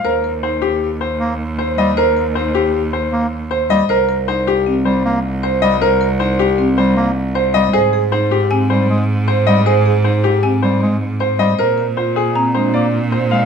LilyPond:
<<
  \new Staff \with { instrumentName = "Xylophone" } { \time 5/4 \key aes \major \tempo 4 = 156 r1 r4 | r1 r4 | r1 r4 | r1 r4 |
r2 aes''8 r2 r8 | r2 aes''8 r2 r8 | r2 bes''8 r2 r8 | }
  \new Staff \with { instrumentName = "Grand piano" } { \time 5/4 \key aes \major bes'8 r8 c''8 g'8 r8 c''8 r4 c''8 ees''8 | bes'8 r8 c''8 g'8 r8 c''8 r4 c''8 ees''8 | bes'8 r8 c''8 g'8 r8 c''8 r4 c''8 ees''8 | bes'8 r8 c''8 g'8 r8 c''8 r4 c''8 ees''8 |
aes'8 r8 c''8 g'8 r8 c''8 r4 c''8 ees''8 | aes'8 r8 c''8 g'8 r8 c''8 r4 c''8 ees''8 | bes'8 r8 c''8 aes'8 r8 c''8 d''8 r8 c''8 f''8 | }
  \new Staff \with { instrumentName = "Marimba" } { \time 5/4 \key aes \major c''8 bes'8 ees'8 r2 r8 c''8 r8 | c''8 bes'8 ees'8 r2 r8 c''8 r8 | c''8 bes'8 ees'8 r8 c'8 r4. c''8 r8 | c''8 bes'8 ees'8 r8 c'8 r4. c''8 r8 |
c''8 aes'8 ees'8 r8 c'8 r4. c''8 r8 | c''8 aes'8 ees'8 r8 c'8 r4. c''8 r8 | c''8 bes'8 f'8 r8 c'8 d'8 r4 c''8 r8 | }
  \new Staff \with { instrumentName = "Bass clarinet" } { \clef bass \time 5/4 \key aes \major r2. bes8 r4 g8 | r2. bes8 r4 g8 | r2 r8 g8 bes8 r4 g8 | r2 r8 g8 bes8 r4 g8 |
r2 r8 g8 aes8 r4 g8 | r2 r8 g8 aes8 r4 g8 | r2 r8 aes8 bes8 r4 aes8 | }
  \new Staff \with { instrumentName = "Cello" } { \clef bass \time 5/4 \key aes \major ees,1~ ees,4~ | ees,1~ ees,4 | c,1~ c,4~ | c,1~ c,4 |
aes,1~ aes,4~ | aes,1~ aes,4 | bes,1~ bes,4 | }
>>